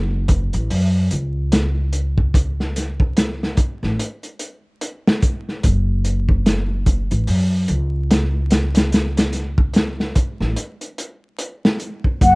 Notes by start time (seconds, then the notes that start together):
Already playing: F#1
0.28 kick, closed hi-hat
0.53 A1, closed hi-hat
0.70 F#2, open hi-hat
1.11 C#2, closed hi-hat
1.52 snare, closed hi-hat
1.93 closed hi-hat
2.18 kick
2.34 kick, closed hi-hat
2.60 snare
2.76 snare, closed hi-hat
3.00 kick
3.17 snare, closed hi-hat
3.43 snare
3.57 kick, closed hi-hat
3.83 A1, snare
3.99 closed hi-hat
4.23 closed hi-hat
4.39 closed hi-hat
4.81 closed hi-hat
5.07 snare
5.22 kick, closed hi-hat
5.49 snare
5.63 F#1, kick, closed hi-hat
6.05 closed hi-hat
6.29 kick
6.46 snare, closed hi-hat
6.86 kick, closed hi-hat
7.11 A1, closed hi-hat
7.27 F#2, open hi-hat
7.68 C#2, closed hi-hat
8.11 snare, closed hi-hat
8.51 snare, closed hi-hat
8.75 snare, closed hi-hat
8.92 snare, closed hi-hat
9.17 snare, closed hi-hat
9.33 snare, closed hi-hat
9.58 kick
9.73 snare, closed hi-hat
10.00 snare
10.15 kick, closed hi-hat
10.40 A1, snare
10.56 closed hi-hat
10.81 closed hi-hat
10.98 closed hi-hat
11.38 closed hi-hat
11.65 snare
11.80 closed hi-hat
12.04 kick
12.21 F#1 E4 F#5, kick, closed hi-hat